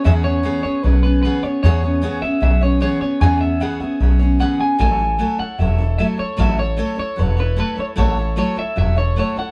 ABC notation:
X:1
M:4/4
L:1/8
Q:1/4=151
K:E
V:1 name="Clean electric guitar"
e c2 c B B B c | c3 e e c c c | g e f e3 f g | g3 f e2 e c |
e c2 c B B B c | c2 c e e c c f |]
V:2 name="Steel-string acoustic guitar"
[C,E,B,CGc] [B,CGc] [C,E,B,CGc] [B,CGc] [B,CGc] [B,CGc] [C,E,B,CGc] [B,CGc] | [C,E,B,CGc] [B,CGc] [C,E,B,CGc] [B,CGc] [B,CGc] [B,CGc] [C,E,B,CGc] [B,CGc] | [C,E,B,CGc] [B,CGc] [C,E,B,CGc] [B,CGc] [B,CGc] [B,CGc] [C,E,B,CGc] [B,CGc] | [F,A,EAc] [EAc] [F,A,EAc] [EAc] [F,EAc] [EAc] [F,A,EAc] [EAc] |
[F,A,EAc] [EAc] [F,A,EAc] [EAc] [F,EAc] [EAc] [F,A,EAc] [EAc] | [F,A,EAc] [EAc] [F,A,EAc] [EAc] [F,EAc] [EAc] [F,A,EAc] [EAc] |]
V:3 name="Upright bass" clef=bass
E,,3 z B,,,3 z | E,,3 z B,,,3 z | E,,3 z B,,,3 z | A,,,3 z E,,,3 z |
A,,,3 z E,,,3 z | A,,,3 z E,,,3 z |]